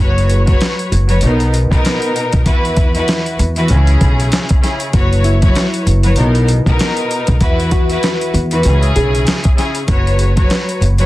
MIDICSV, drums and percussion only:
0, 0, Header, 1, 2, 480
1, 0, Start_track
1, 0, Tempo, 618557
1, 1910, Time_signature, 4, 2, 24, 8
1, 8582, End_track
2, 0, Start_track
2, 0, Title_t, "Drums"
2, 139, Note_on_c, 9, 42, 49
2, 217, Note_off_c, 9, 42, 0
2, 229, Note_on_c, 9, 42, 78
2, 307, Note_off_c, 9, 42, 0
2, 368, Note_on_c, 9, 42, 56
2, 371, Note_on_c, 9, 36, 95
2, 445, Note_off_c, 9, 42, 0
2, 448, Note_off_c, 9, 36, 0
2, 471, Note_on_c, 9, 42, 86
2, 478, Note_on_c, 9, 38, 110
2, 486, Note_on_c, 9, 39, 89
2, 548, Note_off_c, 9, 42, 0
2, 556, Note_off_c, 9, 38, 0
2, 563, Note_off_c, 9, 39, 0
2, 614, Note_on_c, 9, 42, 52
2, 692, Note_off_c, 9, 42, 0
2, 716, Note_on_c, 9, 42, 78
2, 794, Note_off_c, 9, 42, 0
2, 844, Note_on_c, 9, 42, 53
2, 921, Note_off_c, 9, 42, 0
2, 938, Note_on_c, 9, 42, 92
2, 1016, Note_off_c, 9, 42, 0
2, 1086, Note_on_c, 9, 42, 42
2, 1164, Note_off_c, 9, 42, 0
2, 1193, Note_on_c, 9, 42, 71
2, 1270, Note_off_c, 9, 42, 0
2, 1331, Note_on_c, 9, 36, 93
2, 1339, Note_on_c, 9, 42, 48
2, 1409, Note_off_c, 9, 36, 0
2, 1417, Note_off_c, 9, 42, 0
2, 1434, Note_on_c, 9, 42, 110
2, 1444, Note_on_c, 9, 38, 117
2, 1451, Note_on_c, 9, 39, 93
2, 1512, Note_off_c, 9, 42, 0
2, 1522, Note_off_c, 9, 38, 0
2, 1529, Note_off_c, 9, 39, 0
2, 1567, Note_on_c, 9, 42, 60
2, 1645, Note_off_c, 9, 42, 0
2, 1675, Note_on_c, 9, 42, 76
2, 1753, Note_off_c, 9, 42, 0
2, 1805, Note_on_c, 9, 42, 65
2, 1812, Note_on_c, 9, 36, 97
2, 1882, Note_off_c, 9, 42, 0
2, 1889, Note_off_c, 9, 36, 0
2, 1908, Note_on_c, 9, 42, 108
2, 1910, Note_on_c, 9, 36, 107
2, 1985, Note_off_c, 9, 42, 0
2, 1987, Note_off_c, 9, 36, 0
2, 2056, Note_on_c, 9, 42, 52
2, 2134, Note_off_c, 9, 42, 0
2, 2146, Note_on_c, 9, 42, 80
2, 2149, Note_on_c, 9, 36, 90
2, 2223, Note_off_c, 9, 42, 0
2, 2227, Note_off_c, 9, 36, 0
2, 2286, Note_on_c, 9, 42, 57
2, 2364, Note_off_c, 9, 42, 0
2, 2388, Note_on_c, 9, 42, 88
2, 2396, Note_on_c, 9, 38, 111
2, 2403, Note_on_c, 9, 39, 86
2, 2466, Note_off_c, 9, 42, 0
2, 2473, Note_off_c, 9, 38, 0
2, 2481, Note_off_c, 9, 39, 0
2, 2531, Note_on_c, 9, 42, 51
2, 2609, Note_off_c, 9, 42, 0
2, 2633, Note_on_c, 9, 42, 81
2, 2711, Note_off_c, 9, 42, 0
2, 2764, Note_on_c, 9, 42, 51
2, 2841, Note_off_c, 9, 42, 0
2, 2858, Note_on_c, 9, 42, 94
2, 2936, Note_off_c, 9, 42, 0
2, 3005, Note_on_c, 9, 42, 42
2, 3083, Note_off_c, 9, 42, 0
2, 3111, Note_on_c, 9, 42, 71
2, 3113, Note_on_c, 9, 36, 86
2, 3189, Note_off_c, 9, 42, 0
2, 3191, Note_off_c, 9, 36, 0
2, 3257, Note_on_c, 9, 42, 48
2, 3335, Note_off_c, 9, 42, 0
2, 3351, Note_on_c, 9, 42, 106
2, 3361, Note_on_c, 9, 38, 122
2, 3369, Note_on_c, 9, 39, 94
2, 3429, Note_off_c, 9, 42, 0
2, 3439, Note_off_c, 9, 38, 0
2, 3446, Note_off_c, 9, 39, 0
2, 3485, Note_on_c, 9, 42, 59
2, 3496, Note_on_c, 9, 36, 97
2, 3563, Note_off_c, 9, 42, 0
2, 3574, Note_off_c, 9, 36, 0
2, 3597, Note_on_c, 9, 42, 70
2, 3600, Note_on_c, 9, 38, 34
2, 3674, Note_off_c, 9, 42, 0
2, 3678, Note_off_c, 9, 38, 0
2, 3723, Note_on_c, 9, 42, 63
2, 3801, Note_off_c, 9, 42, 0
2, 3828, Note_on_c, 9, 42, 108
2, 3830, Note_on_c, 9, 36, 108
2, 3906, Note_off_c, 9, 42, 0
2, 3907, Note_off_c, 9, 36, 0
2, 3977, Note_on_c, 9, 42, 50
2, 4055, Note_off_c, 9, 42, 0
2, 4068, Note_on_c, 9, 42, 79
2, 4145, Note_off_c, 9, 42, 0
2, 4207, Note_on_c, 9, 42, 57
2, 4211, Note_on_c, 9, 36, 94
2, 4284, Note_off_c, 9, 42, 0
2, 4288, Note_off_c, 9, 36, 0
2, 4310, Note_on_c, 9, 42, 89
2, 4318, Note_on_c, 9, 38, 113
2, 4325, Note_on_c, 9, 39, 90
2, 4388, Note_off_c, 9, 42, 0
2, 4395, Note_off_c, 9, 38, 0
2, 4403, Note_off_c, 9, 39, 0
2, 4453, Note_on_c, 9, 42, 53
2, 4530, Note_off_c, 9, 42, 0
2, 4555, Note_on_c, 9, 42, 81
2, 4632, Note_off_c, 9, 42, 0
2, 4683, Note_on_c, 9, 42, 52
2, 4760, Note_off_c, 9, 42, 0
2, 4779, Note_on_c, 9, 42, 96
2, 4857, Note_off_c, 9, 42, 0
2, 4927, Note_on_c, 9, 42, 42
2, 5005, Note_off_c, 9, 42, 0
2, 5032, Note_on_c, 9, 42, 70
2, 5109, Note_off_c, 9, 42, 0
2, 5170, Note_on_c, 9, 36, 94
2, 5176, Note_on_c, 9, 42, 48
2, 5248, Note_off_c, 9, 36, 0
2, 5254, Note_off_c, 9, 42, 0
2, 5271, Note_on_c, 9, 42, 105
2, 5281, Note_on_c, 9, 38, 117
2, 5288, Note_on_c, 9, 39, 95
2, 5349, Note_off_c, 9, 42, 0
2, 5359, Note_off_c, 9, 38, 0
2, 5366, Note_off_c, 9, 39, 0
2, 5406, Note_on_c, 9, 42, 56
2, 5483, Note_off_c, 9, 42, 0
2, 5515, Note_on_c, 9, 42, 74
2, 5593, Note_off_c, 9, 42, 0
2, 5641, Note_on_c, 9, 42, 67
2, 5651, Note_on_c, 9, 36, 97
2, 5719, Note_off_c, 9, 42, 0
2, 5728, Note_off_c, 9, 36, 0
2, 5747, Note_on_c, 9, 42, 102
2, 5749, Note_on_c, 9, 36, 109
2, 5824, Note_off_c, 9, 42, 0
2, 5827, Note_off_c, 9, 36, 0
2, 5895, Note_on_c, 9, 42, 50
2, 5973, Note_off_c, 9, 42, 0
2, 5986, Note_on_c, 9, 42, 81
2, 5989, Note_on_c, 9, 36, 89
2, 6064, Note_off_c, 9, 42, 0
2, 6067, Note_off_c, 9, 36, 0
2, 6127, Note_on_c, 9, 42, 55
2, 6205, Note_off_c, 9, 42, 0
2, 6230, Note_on_c, 9, 42, 90
2, 6238, Note_on_c, 9, 38, 111
2, 6245, Note_on_c, 9, 39, 90
2, 6308, Note_off_c, 9, 42, 0
2, 6315, Note_off_c, 9, 38, 0
2, 6323, Note_off_c, 9, 39, 0
2, 6373, Note_on_c, 9, 42, 53
2, 6451, Note_off_c, 9, 42, 0
2, 6475, Note_on_c, 9, 42, 77
2, 6553, Note_off_c, 9, 42, 0
2, 6604, Note_on_c, 9, 42, 54
2, 6681, Note_off_c, 9, 42, 0
2, 6699, Note_on_c, 9, 42, 94
2, 6776, Note_off_c, 9, 42, 0
2, 6848, Note_on_c, 9, 42, 43
2, 6925, Note_off_c, 9, 42, 0
2, 6951, Note_on_c, 9, 42, 71
2, 7028, Note_off_c, 9, 42, 0
2, 7098, Note_on_c, 9, 42, 49
2, 7176, Note_off_c, 9, 42, 0
2, 7192, Note_on_c, 9, 42, 106
2, 7201, Note_on_c, 9, 38, 115
2, 7209, Note_on_c, 9, 39, 96
2, 7269, Note_off_c, 9, 42, 0
2, 7279, Note_off_c, 9, 38, 0
2, 7286, Note_off_c, 9, 39, 0
2, 7325, Note_on_c, 9, 42, 60
2, 7335, Note_on_c, 9, 36, 99
2, 7402, Note_off_c, 9, 42, 0
2, 7413, Note_off_c, 9, 36, 0
2, 7436, Note_on_c, 9, 42, 73
2, 7440, Note_on_c, 9, 38, 35
2, 7514, Note_off_c, 9, 42, 0
2, 7517, Note_off_c, 9, 38, 0
2, 7564, Note_on_c, 9, 42, 66
2, 7642, Note_off_c, 9, 42, 0
2, 7666, Note_on_c, 9, 42, 106
2, 7669, Note_on_c, 9, 36, 111
2, 7744, Note_off_c, 9, 42, 0
2, 7746, Note_off_c, 9, 36, 0
2, 7816, Note_on_c, 9, 42, 49
2, 7893, Note_off_c, 9, 42, 0
2, 7906, Note_on_c, 9, 42, 76
2, 7984, Note_off_c, 9, 42, 0
2, 8046, Note_on_c, 9, 42, 55
2, 8049, Note_on_c, 9, 36, 94
2, 8123, Note_off_c, 9, 42, 0
2, 8127, Note_off_c, 9, 36, 0
2, 8148, Note_on_c, 9, 42, 90
2, 8155, Note_on_c, 9, 38, 108
2, 8163, Note_on_c, 9, 39, 91
2, 8225, Note_off_c, 9, 42, 0
2, 8233, Note_off_c, 9, 38, 0
2, 8240, Note_off_c, 9, 39, 0
2, 8294, Note_on_c, 9, 42, 54
2, 8371, Note_off_c, 9, 42, 0
2, 8397, Note_on_c, 9, 42, 77
2, 8474, Note_off_c, 9, 42, 0
2, 8523, Note_on_c, 9, 42, 52
2, 8582, Note_off_c, 9, 42, 0
2, 8582, End_track
0, 0, End_of_file